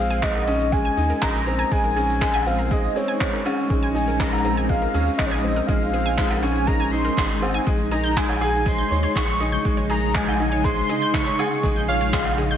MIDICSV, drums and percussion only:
0, 0, Header, 1, 2, 480
1, 0, Start_track
1, 0, Key_signature, -5, "minor"
1, 0, Tempo, 495868
1, 1663, Time_signature, 4, 2, 24, 8
1, 12170, End_track
2, 0, Start_track
2, 0, Title_t, "Drums"
2, 106, Note_on_c, 9, 82, 48
2, 203, Note_off_c, 9, 82, 0
2, 218, Note_on_c, 9, 82, 56
2, 221, Note_on_c, 9, 36, 104
2, 221, Note_on_c, 9, 39, 88
2, 315, Note_off_c, 9, 82, 0
2, 318, Note_off_c, 9, 36, 0
2, 318, Note_off_c, 9, 39, 0
2, 340, Note_on_c, 9, 77, 56
2, 345, Note_on_c, 9, 82, 37
2, 437, Note_off_c, 9, 77, 0
2, 442, Note_off_c, 9, 82, 0
2, 457, Note_on_c, 9, 82, 79
2, 554, Note_off_c, 9, 82, 0
2, 576, Note_on_c, 9, 82, 49
2, 672, Note_off_c, 9, 82, 0
2, 701, Note_on_c, 9, 36, 104
2, 705, Note_on_c, 9, 82, 58
2, 798, Note_off_c, 9, 36, 0
2, 802, Note_off_c, 9, 82, 0
2, 815, Note_on_c, 9, 82, 39
2, 912, Note_off_c, 9, 82, 0
2, 943, Note_on_c, 9, 82, 74
2, 1040, Note_off_c, 9, 82, 0
2, 1057, Note_on_c, 9, 82, 53
2, 1154, Note_off_c, 9, 82, 0
2, 1181, Note_on_c, 9, 82, 49
2, 1182, Note_on_c, 9, 36, 101
2, 1183, Note_on_c, 9, 39, 93
2, 1278, Note_off_c, 9, 82, 0
2, 1279, Note_off_c, 9, 36, 0
2, 1280, Note_off_c, 9, 39, 0
2, 1300, Note_on_c, 9, 82, 41
2, 1397, Note_off_c, 9, 82, 0
2, 1415, Note_on_c, 9, 82, 76
2, 1512, Note_off_c, 9, 82, 0
2, 1551, Note_on_c, 9, 82, 56
2, 1647, Note_off_c, 9, 82, 0
2, 1661, Note_on_c, 9, 36, 110
2, 1673, Note_on_c, 9, 82, 59
2, 1758, Note_off_c, 9, 36, 0
2, 1769, Note_off_c, 9, 82, 0
2, 1783, Note_on_c, 9, 82, 38
2, 1880, Note_off_c, 9, 82, 0
2, 1910, Note_on_c, 9, 82, 85
2, 2007, Note_off_c, 9, 82, 0
2, 2025, Note_on_c, 9, 82, 57
2, 2122, Note_off_c, 9, 82, 0
2, 2144, Note_on_c, 9, 36, 110
2, 2148, Note_on_c, 9, 39, 96
2, 2150, Note_on_c, 9, 82, 63
2, 2240, Note_off_c, 9, 36, 0
2, 2245, Note_off_c, 9, 39, 0
2, 2247, Note_off_c, 9, 82, 0
2, 2272, Note_on_c, 9, 82, 43
2, 2274, Note_on_c, 9, 77, 57
2, 2369, Note_off_c, 9, 82, 0
2, 2371, Note_off_c, 9, 77, 0
2, 2384, Note_on_c, 9, 82, 83
2, 2480, Note_off_c, 9, 82, 0
2, 2504, Note_on_c, 9, 82, 49
2, 2601, Note_off_c, 9, 82, 0
2, 2625, Note_on_c, 9, 36, 108
2, 2627, Note_on_c, 9, 82, 61
2, 2721, Note_off_c, 9, 36, 0
2, 2723, Note_off_c, 9, 82, 0
2, 2749, Note_on_c, 9, 82, 42
2, 2846, Note_off_c, 9, 82, 0
2, 2871, Note_on_c, 9, 82, 92
2, 2968, Note_off_c, 9, 82, 0
2, 2984, Note_on_c, 9, 82, 46
2, 3081, Note_off_c, 9, 82, 0
2, 3104, Note_on_c, 9, 36, 111
2, 3106, Note_on_c, 9, 39, 96
2, 3106, Note_on_c, 9, 82, 57
2, 3201, Note_off_c, 9, 36, 0
2, 3203, Note_off_c, 9, 39, 0
2, 3203, Note_off_c, 9, 82, 0
2, 3233, Note_on_c, 9, 82, 41
2, 3329, Note_off_c, 9, 82, 0
2, 3346, Note_on_c, 9, 82, 84
2, 3348, Note_on_c, 9, 77, 54
2, 3443, Note_off_c, 9, 82, 0
2, 3445, Note_off_c, 9, 77, 0
2, 3465, Note_on_c, 9, 82, 50
2, 3561, Note_off_c, 9, 82, 0
2, 3584, Note_on_c, 9, 36, 122
2, 3595, Note_on_c, 9, 82, 58
2, 3681, Note_off_c, 9, 36, 0
2, 3691, Note_off_c, 9, 82, 0
2, 3713, Note_on_c, 9, 82, 43
2, 3810, Note_off_c, 9, 82, 0
2, 3831, Note_on_c, 9, 82, 95
2, 3928, Note_off_c, 9, 82, 0
2, 3954, Note_on_c, 9, 82, 60
2, 4051, Note_off_c, 9, 82, 0
2, 4064, Note_on_c, 9, 36, 109
2, 4069, Note_on_c, 9, 39, 97
2, 4077, Note_on_c, 9, 82, 70
2, 4161, Note_off_c, 9, 36, 0
2, 4166, Note_off_c, 9, 39, 0
2, 4174, Note_off_c, 9, 82, 0
2, 4185, Note_on_c, 9, 77, 58
2, 4185, Note_on_c, 9, 82, 40
2, 4282, Note_off_c, 9, 77, 0
2, 4282, Note_off_c, 9, 82, 0
2, 4301, Note_on_c, 9, 82, 87
2, 4398, Note_off_c, 9, 82, 0
2, 4418, Note_on_c, 9, 82, 48
2, 4515, Note_off_c, 9, 82, 0
2, 4544, Note_on_c, 9, 36, 105
2, 4553, Note_on_c, 9, 82, 61
2, 4640, Note_off_c, 9, 36, 0
2, 4649, Note_off_c, 9, 82, 0
2, 4670, Note_on_c, 9, 82, 47
2, 4767, Note_off_c, 9, 82, 0
2, 4784, Note_on_c, 9, 82, 81
2, 4880, Note_off_c, 9, 82, 0
2, 4912, Note_on_c, 9, 82, 55
2, 5009, Note_off_c, 9, 82, 0
2, 5024, Note_on_c, 9, 36, 116
2, 5027, Note_on_c, 9, 39, 98
2, 5027, Note_on_c, 9, 82, 55
2, 5121, Note_off_c, 9, 36, 0
2, 5124, Note_off_c, 9, 39, 0
2, 5124, Note_off_c, 9, 82, 0
2, 5149, Note_on_c, 9, 82, 37
2, 5246, Note_off_c, 9, 82, 0
2, 5268, Note_on_c, 9, 82, 71
2, 5364, Note_off_c, 9, 82, 0
2, 5386, Note_on_c, 9, 82, 50
2, 5483, Note_off_c, 9, 82, 0
2, 5504, Note_on_c, 9, 36, 114
2, 5507, Note_on_c, 9, 82, 60
2, 5601, Note_off_c, 9, 36, 0
2, 5604, Note_off_c, 9, 82, 0
2, 5626, Note_on_c, 9, 82, 40
2, 5723, Note_off_c, 9, 82, 0
2, 5741, Note_on_c, 9, 82, 80
2, 5838, Note_off_c, 9, 82, 0
2, 5861, Note_on_c, 9, 82, 59
2, 5958, Note_off_c, 9, 82, 0
2, 5977, Note_on_c, 9, 82, 61
2, 5983, Note_on_c, 9, 39, 95
2, 5984, Note_on_c, 9, 36, 109
2, 6074, Note_off_c, 9, 82, 0
2, 6080, Note_off_c, 9, 36, 0
2, 6080, Note_off_c, 9, 39, 0
2, 6104, Note_on_c, 9, 77, 58
2, 6110, Note_on_c, 9, 82, 41
2, 6200, Note_off_c, 9, 77, 0
2, 6207, Note_off_c, 9, 82, 0
2, 6228, Note_on_c, 9, 82, 82
2, 6325, Note_off_c, 9, 82, 0
2, 6338, Note_on_c, 9, 82, 49
2, 6435, Note_off_c, 9, 82, 0
2, 6460, Note_on_c, 9, 82, 60
2, 6464, Note_on_c, 9, 36, 107
2, 6557, Note_off_c, 9, 82, 0
2, 6561, Note_off_c, 9, 36, 0
2, 6591, Note_on_c, 9, 82, 39
2, 6688, Note_off_c, 9, 82, 0
2, 6706, Note_on_c, 9, 82, 92
2, 6803, Note_off_c, 9, 82, 0
2, 6834, Note_on_c, 9, 82, 47
2, 6930, Note_off_c, 9, 82, 0
2, 6945, Note_on_c, 9, 36, 115
2, 6949, Note_on_c, 9, 82, 51
2, 6957, Note_on_c, 9, 39, 90
2, 7042, Note_off_c, 9, 36, 0
2, 7046, Note_off_c, 9, 82, 0
2, 7054, Note_off_c, 9, 39, 0
2, 7074, Note_on_c, 9, 82, 42
2, 7171, Note_off_c, 9, 82, 0
2, 7186, Note_on_c, 9, 77, 59
2, 7191, Note_on_c, 9, 82, 84
2, 7283, Note_off_c, 9, 77, 0
2, 7288, Note_off_c, 9, 82, 0
2, 7310, Note_on_c, 9, 82, 54
2, 7406, Note_off_c, 9, 82, 0
2, 7424, Note_on_c, 9, 36, 115
2, 7426, Note_on_c, 9, 82, 54
2, 7521, Note_off_c, 9, 36, 0
2, 7523, Note_off_c, 9, 82, 0
2, 7545, Note_on_c, 9, 82, 40
2, 7641, Note_off_c, 9, 82, 0
2, 7668, Note_on_c, 9, 82, 88
2, 7765, Note_off_c, 9, 82, 0
2, 7789, Note_on_c, 9, 82, 57
2, 7885, Note_off_c, 9, 82, 0
2, 7905, Note_on_c, 9, 36, 110
2, 7912, Note_on_c, 9, 82, 62
2, 7913, Note_on_c, 9, 39, 92
2, 8002, Note_off_c, 9, 36, 0
2, 8009, Note_off_c, 9, 82, 0
2, 8010, Note_off_c, 9, 39, 0
2, 8027, Note_on_c, 9, 77, 64
2, 8029, Note_on_c, 9, 82, 41
2, 8124, Note_off_c, 9, 77, 0
2, 8126, Note_off_c, 9, 82, 0
2, 8159, Note_on_c, 9, 82, 87
2, 8256, Note_off_c, 9, 82, 0
2, 8274, Note_on_c, 9, 82, 51
2, 8371, Note_off_c, 9, 82, 0
2, 8384, Note_on_c, 9, 36, 103
2, 8391, Note_on_c, 9, 82, 67
2, 8481, Note_off_c, 9, 36, 0
2, 8488, Note_off_c, 9, 82, 0
2, 8512, Note_on_c, 9, 82, 39
2, 8609, Note_off_c, 9, 82, 0
2, 8636, Note_on_c, 9, 82, 83
2, 8732, Note_off_c, 9, 82, 0
2, 8749, Note_on_c, 9, 82, 49
2, 8846, Note_off_c, 9, 82, 0
2, 8863, Note_on_c, 9, 36, 110
2, 8878, Note_on_c, 9, 39, 94
2, 8878, Note_on_c, 9, 82, 55
2, 8960, Note_off_c, 9, 36, 0
2, 8975, Note_off_c, 9, 39, 0
2, 8975, Note_off_c, 9, 82, 0
2, 8992, Note_on_c, 9, 82, 43
2, 9089, Note_off_c, 9, 82, 0
2, 9104, Note_on_c, 9, 82, 83
2, 9201, Note_off_c, 9, 82, 0
2, 9230, Note_on_c, 9, 82, 51
2, 9327, Note_off_c, 9, 82, 0
2, 9343, Note_on_c, 9, 36, 110
2, 9353, Note_on_c, 9, 82, 56
2, 9440, Note_off_c, 9, 36, 0
2, 9450, Note_off_c, 9, 82, 0
2, 9468, Note_on_c, 9, 82, 41
2, 9565, Note_off_c, 9, 82, 0
2, 9592, Note_on_c, 9, 82, 84
2, 9689, Note_off_c, 9, 82, 0
2, 9706, Note_on_c, 9, 82, 48
2, 9802, Note_off_c, 9, 82, 0
2, 9823, Note_on_c, 9, 36, 107
2, 9824, Note_on_c, 9, 82, 58
2, 9825, Note_on_c, 9, 39, 93
2, 9920, Note_off_c, 9, 36, 0
2, 9921, Note_off_c, 9, 82, 0
2, 9922, Note_off_c, 9, 39, 0
2, 9944, Note_on_c, 9, 82, 42
2, 9954, Note_on_c, 9, 77, 61
2, 10041, Note_off_c, 9, 82, 0
2, 10051, Note_off_c, 9, 77, 0
2, 10065, Note_on_c, 9, 82, 86
2, 10162, Note_off_c, 9, 82, 0
2, 10188, Note_on_c, 9, 82, 54
2, 10284, Note_off_c, 9, 82, 0
2, 10298, Note_on_c, 9, 82, 52
2, 10303, Note_on_c, 9, 36, 107
2, 10395, Note_off_c, 9, 82, 0
2, 10400, Note_off_c, 9, 36, 0
2, 10421, Note_on_c, 9, 82, 48
2, 10518, Note_off_c, 9, 82, 0
2, 10544, Note_on_c, 9, 82, 79
2, 10640, Note_off_c, 9, 82, 0
2, 10663, Note_on_c, 9, 82, 47
2, 10760, Note_off_c, 9, 82, 0
2, 10779, Note_on_c, 9, 82, 60
2, 10782, Note_on_c, 9, 36, 105
2, 10788, Note_on_c, 9, 39, 92
2, 10876, Note_off_c, 9, 82, 0
2, 10878, Note_off_c, 9, 36, 0
2, 10885, Note_off_c, 9, 39, 0
2, 10911, Note_on_c, 9, 82, 39
2, 11008, Note_off_c, 9, 82, 0
2, 11023, Note_on_c, 9, 82, 75
2, 11028, Note_on_c, 9, 77, 54
2, 11120, Note_off_c, 9, 82, 0
2, 11125, Note_off_c, 9, 77, 0
2, 11147, Note_on_c, 9, 82, 51
2, 11244, Note_off_c, 9, 82, 0
2, 11262, Note_on_c, 9, 36, 110
2, 11263, Note_on_c, 9, 82, 51
2, 11359, Note_off_c, 9, 36, 0
2, 11360, Note_off_c, 9, 82, 0
2, 11387, Note_on_c, 9, 82, 40
2, 11484, Note_off_c, 9, 82, 0
2, 11497, Note_on_c, 9, 82, 81
2, 11594, Note_off_c, 9, 82, 0
2, 11622, Note_on_c, 9, 82, 50
2, 11719, Note_off_c, 9, 82, 0
2, 11742, Note_on_c, 9, 36, 104
2, 11747, Note_on_c, 9, 39, 94
2, 11749, Note_on_c, 9, 82, 60
2, 11838, Note_off_c, 9, 36, 0
2, 11844, Note_off_c, 9, 39, 0
2, 11846, Note_off_c, 9, 82, 0
2, 11858, Note_on_c, 9, 82, 40
2, 11859, Note_on_c, 9, 77, 69
2, 11955, Note_off_c, 9, 82, 0
2, 11956, Note_off_c, 9, 77, 0
2, 11985, Note_on_c, 9, 82, 78
2, 12082, Note_off_c, 9, 82, 0
2, 12106, Note_on_c, 9, 82, 53
2, 12170, Note_off_c, 9, 82, 0
2, 12170, End_track
0, 0, End_of_file